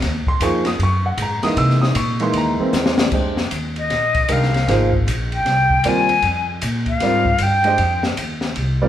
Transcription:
0.02 D#2, snare, ride
0.27 C6, muted upright bass stroke, kick
0.40 F2 F3 A#3 D#4 G#4 C#6, hi-hat pedal, ride
0.65 D#6, snare, ride
0.79 F#2, ride
0.83 C#6
1.06 F#5
1.17 G#2, hi-hat pedal, ride
1.22 A#5
1.43 E3 G#3 A#3 D#4 D#6, muted upright bass stroke, snare, ride
1.57 C3 E6, ride
1.70 snare
1.82 D#6, snare
1.95 A#2 C#6, hi-hat pedal, ride
2.20 E3 G#3 A#3 D#4 C6, ride
2.33 D#2, ride
2.38 A#5
2.59 E3 G#3 A#3 C4, muted upright bass stroke
2.73 E2, snare, hi-hat pedal
2.86 snare
2.98 snare
3.12 F2 G#3 D4 G4 C5 D#5, kick, crash
3.37 snare
3.51 D#2, hi-hat pedal, ride
3.76 D#5, ride
3.90 A#1, snare, ride
4.14 kick, ride
4.28 C2 D#3 G#3 D4 G4 A#4 F5, hi-hat pedal, ride
4.43 snare
4.54 snare, ride
4.67 G#1 F3 A#3 D#4 G#4 C5, snare, ride
4.93 kick
5.06 A#1, hi-hat pedal, ride
5.32 G5, ride
5.45 C2, snare, ride
5.70 kick
5.84 D#2 G3 C4 F4 A#4 D5 G#5, hi-hat pedal, ride
6.09 ride
6.22 F2, ride
6.61 A#2, hi-hat pedal, ride
6.86 F5, kick, ride
7.00 G#2 G3 C4 F4 A#4 D5, snare, ride
7.25 kick
7.38 G2, hi-hat pedal, ride
7.43 G5
7.64 G#3 D4 G4 C5 D#5, ride
7.78 F2, ride
8.03 snare
8.17 D#2, hi-hat pedal, ride
8.41 snare
8.56 C2, ride
8.82 G3 C4 F4 A#4 D5

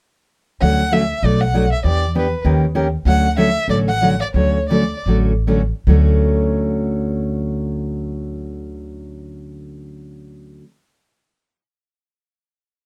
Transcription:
0.62 D2 D3 F#3 A3 C#4 F#4 F#5
0.92 D3 F#3 A3 C#4 F#4 E5
1.23 B1 B2 F#3 A3 D4 F#4 D5
1.41 F#5
1.54 B2 F#3 A3 D4 F#4
1.72 E5
1.84 E2 E3 B3 D4 G4 D5
2.15 E3 B3 D4 G4 B4
2.45 D#2 D#3 A#3 C#4 G4 A#4
2.75 D#3 A#3 C#4 G4 A#4
3.05 D2 D3 F#3 A3 C#4 F#4 F#5
3.37 D3 F#3 A3 C#4 F#4 E5
3.68 A1 D3 F#3 A3 C#4 F#4 D5
3.88 F#5
4.01 D3 F#3 A3 C#4 F#4
4.21 D5
4.34 D2 D3 F#3 A3 C#4 F#4 C#5
4.69 D3 F#3 A3 C#4 F#4 D5
5.06 A1 D3 F#3 A3 C#4 F#4
5.47 D3 F#3 A3 C#4 F#4
5.87 D2 D3 F#3 A3 C#4 F#4

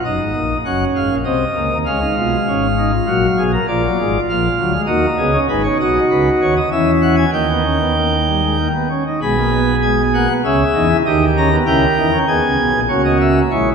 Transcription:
0.05 F#1 F#2 D#4 D#5
0.18 G#1 G#2
0.35 A#1 A#2
0.65 F#1 F#2 C#4 F#5
0.95 G#1 G#2 F5
1.09 A#1 A#2
1.24 C2 C3 C4 D#5
1.55 C#2 C#3 A#3
1.70 D#2 D#3
1.86 C#2 C#3 G#3 C#4 F5
2.00 D#4
2.17 B1 B2 F4
2.48 G#1 G#2 C#4
2.78 D#4
2.93 F4
3.07 A#1 A#2 F#3 F#4
3.38 B1 B2 G#4
3.53 A#4
3.68 A#1 A#2 F3 F4 D5
3.84 F#3
3.98 G#1 G#2 G#3
4.29 A#1 A#2 F3 F5
4.58 D2 D3 F#3
4.73 G#3
4.86 D#2 D#3 A#3 F#4 D#5
5.18 C#2 C#3 B3 G#4
5.33 C#4
5.48 G#1 G#2 D#4 G#4 B4
5.64 C#5
5.80 B1 B2 F#4 D#5
6.10 C#2 C#3 B4
6.41 D#2 D#3 C#5
6.56 D#5
6.71 E2 E3 C#4 E4 E5
7.02 F#5
7.17 G#5
7.32 D#2 D#3 A#3 D#4 G5
7.49 B3
7.64 C#4
7.80 B3
7.97 A#3
8.28 G3
8.43 G#3
8.59 A#3
8.75 B3
8.90 C#4
9.07 D#4
9.21 B1 B2 G#3 G#4 B5
9.38 A#3
9.53 B3
9.83 G#3 G#5
10.14 A#3 F#5
10.29 B3
10.44 C#2 C#3 C#4 G#4 E5
10.74 E2 E3 D#4
10.90 E4
11.06 D#2 D#3 D#4 G4 D#5
11.36 C#4 A#5
11.52 B3
11.66 C#2 C#3 E4 A#4 G5
11.97 E2 E3 D#4
12.12 C#4
12.27 D#2 D#3 B3 G#4 G#5
12.44 C#2 C#3
12.59 B1 B2
12.74 A#1 A#2
12.88 C#2 C#3 A#3 F#4 C#5
13.05 D#5
13.21 E5
13.50 A#1 A#2 G#3 E4 C#5

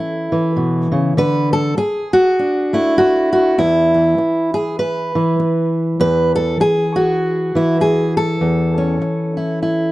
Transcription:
Already playing: E3 C#4 E4 A4
0.32 E3
0.56 B2
0.92 C#3
1.17 D3 B4
1.53 A4
1.77 G#4, muted steel-string acoustic guitar stroke
2.13 F#4
2.39 D4
2.73 A3 E4
2.98 F#4, muted steel-string acoustic guitar stroke
3.33 F#4
3.58 E2 E4
3.94 E3
4.18 muted steel-string acoustic guitar stroke
4.54 G#4
4.79 B4
5.15 E3
5.40 muted steel-string acoustic guitar stroke
6.00 E2 B4
6.36 A4
6.60 G#4, muted steel-string acoustic guitar stroke
6.96 F#4
7.55 E3 E4
7.81 G#4, muted steel-string acoustic guitar stroke
8.17 A4
8.41 E2
8.78 C#4
9.02 muted steel-string acoustic guitar stroke
9.37 E4
9.63 E4

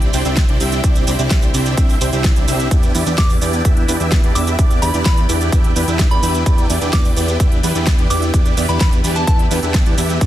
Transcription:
Already playing: C2 E4 C5 D5 G5
0.02 closed hi-hat
0.13 C2 C4 D4 E4 G4 C5, open hi-hat, shaker
0.25 C2 C4 D4 E4 G4 E5, closed hi-hat, shaker
0.37 kick, snare, closed hi-hat, shaker
0.49 C2 C4 D4 E4 G4 D5, closed hi-hat
0.60 C2 C4 D4 E4 G4 E5, open hi-hat, shaker
0.72 closed hi-hat, shaker
0.84 C2 C4 D4 E4 G4 D5 E5, kick, closed hi-hat, shaker
0.95 closed hi-hat, shaker
1.07 C2 C4 D4 E4 G4 D5, open hi-hat, shaker
1.19 C2 C4 D4 E4 G4 D5, closed hi-hat, shaker
1.31 C2 C4 D4 E4 G4 D5, kick, snare, closed hi-hat, shaker
1.42 closed hi-hat, shaker
1.54 C2 C4 D4 E4 G4 D5, open hi-hat, shaker
1.66 closed hi-hat, shaker
1.77 C2 C4 D4 E4 G4 E5, kick, closed hi-hat, shaker
1.89 open hi-hat, shaker
2.01 C2 C4 D4 E4 G4 C5, open hi-hat, shaker
2.13 C2 C4 D4 E4 G4 E5, closed hi-hat, shaker
2.24 kick, snare, closed hi-hat, shaker
2.36 C2 C4 D4 E4 G4 D5, closed hi-hat, shaker
2.48 C2 C4 D4 E4 G4 E5, open hi-hat, shaker
2.60 closed hi-hat, shaker
2.71 E2 B3 D4 E4 G4 B4 D5 G5, kick, closed hi-hat, shaker
2.83 closed hi-hat, shaker
2.95 E2 B3 D4 E4 G4 D5, open hi-hat, shaker
3.06 E2 B3 D4 E4 G4 D5, closed hi-hat, shaker
3.18 E2 B3 D4 E4 G4 D5 D6, kick, snare, closed hi-hat, shaker
3.30 open hi-hat, shaker
3.41 E2 B3 D4 E4 G4 D5, open hi-hat, shaker
3.53 closed hi-hat, shaker
3.65 E2 B3 D4 E4 G4 E5, kick, closed hi-hat, shaker
3.77 closed hi-hat
3.88 E2 B3 D4 E4 G4 B4, open hi-hat, shaker
4.00 E2 B3 D4 E4 G4 E5, closed hi-hat, shaker
4.12 kick, snare, closed hi-hat, shaker
4.24 E2 B3 D4 E4 G4 D5, closed hi-hat
4.35 E2 B3 D4 E4 G4 E5 D6, open hi-hat, shaker
4.47 closed hi-hat, shaker
4.59 E2 B3 D4 E4 G4 D5, kick, closed hi-hat, shaker
4.70 closed hi-hat, shaker
4.82 E2 B3 D4 E4 G4 D5 B5, open hi-hat, shaker
4.94 E2 B3 D4 E4 G4 D5, closed hi-hat, shaker
5.05 E2 B3 D4 E4 G4 D5 B5, kick, snare, closed hi-hat, shaker
5.17 closed hi-hat, shaker
5.29 E2 B3 D4 E4 G4 D5, open hi-hat, shaker
5.41 closed hi-hat, shaker
5.52 E2 B3 D4 E4 G4 E5, kick, closed hi-hat, shaker
5.64 closed hi-hat
5.76 E2 B3 D4 E4 G4 B4, open hi-hat, shaker
5.88 E2 B3 D4 E4 G4 E5, closed hi-hat, shaker
5.99 kick, snare, closed hi-hat, shaker
6.11 E2 B3 D4 E4 G4 D5 B5, closed hi-hat
6.23 E2 B3 D4 E4 G4 E5, open hi-hat, shaker
6.35 closed hi-hat, shaker
6.46 E2 B3 D4 E4 G4 D5, kick, closed hi-hat, shaker
6.58 closed hi-hat, shaker
6.70 E2 B3 D4 E4 G4 D5, open hi-hat, shaker
6.81 E2 B3 D4 E4 G4 D5, closed hi-hat, shaker
6.93 E2 B3 D4 E4 G4 D5 D6, kick, snare, closed hi-hat, shaker
7.05 open hi-hat, shaker
7.16 E2 B3 D4 E4 G4 D5, open hi-hat, shaker
7.28 closed hi-hat, shaker
7.40 E2 B3 D4 E4 G4 E5, kick, closed hi-hat, shaker
7.52 closed hi-hat
7.63 E2 B3 D4 E4 G4 B4, open hi-hat, shaker
7.75 E2 B3 D4 E4 G4 E5, closed hi-hat, shaker
7.87 kick, snare, closed hi-hat, shaker
7.98 E2 B3 D4 E4 G4 D5, closed hi-hat
8.10 E2 B3 D4 E4 G4 E5 D6, open hi-hat, shaker
8.22 closed hi-hat, shaker
8.34 E2 B3 D4 E4 G4 D5, kick, closed hi-hat, shaker
8.45 closed hi-hat, shaker
8.57 E2 B3 D4 E4 G4 D5, open hi-hat, shaker
8.69 E2 B3 D4 E4 G4 D5 B5, closed hi-hat, shaker
8.81 E2 B3 D4 E4 G4 D5 B5, kick, snare, closed hi-hat, shaker
8.92 closed hi-hat, shaker
9.04 E2 B3 D4 E4 G4 D5, open hi-hat, shaker
9.16 A5, closed hi-hat, shaker
9.27 E2 B3 D4 E4 G4 E5 A5, kick, closed hi-hat, shaker
9.39 closed hi-hat
9.51 E2 B3 D4 E4 G4 B4, open hi-hat, shaker
9.63 E2 B3 D4 E4 G4 E5, closed hi-hat, shaker
9.74 kick, snare, closed hi-hat, shaker
9.86 E2 B3 D4 E4 G4 D5, closed hi-hat, shaker
9.98 E2 B3 D4 E4 G4 E5, open hi-hat, shaker
10.10 closed hi-hat, shaker
10.21 D2 A3 D4 E4 F#4 A4 D5 F#5, kick, closed hi-hat, shaker

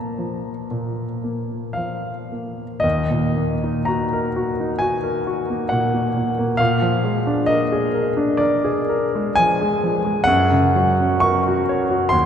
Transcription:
Already playing: A#2 F3 A#3 A5 A#5
0.18 F3
0.71 A#2
1.24 A#3
1.73 F5
1.77 F3
2.32 A#3
2.80 D#2 D#5
3.11 A#2
3.36 A#3
3.63 D#4
3.85 F#4 A#5
4.13 A#4
4.36 F#4
4.60 D#4
4.79 F#4 G#5
5.04 A#4
5.27 F#4
5.50 A#3
5.69 A#2 F#5
5.94 A#3
6.17 A#2
6.39 A#3
6.57 A#2 F5
6.82 F3
7.04 G#3
7.27 D4
7.46 A#4 D#5
7.72 G#4
7.94 A#4
8.17 D4
8.37 A#4 D5
8.64 G#4
8.89 A#4
9.15 G#3
9.35 F3 G#5
9.61 G#3
9.83 F3
10.05 G#3
10.24 F#2 F#5
10.51 C#3
10.76 F#3
11.00 C#4
11.20 A#4 C#6
11.48 F#4
11.69 C#5
11.90 F#4
12.09 D#2 C6

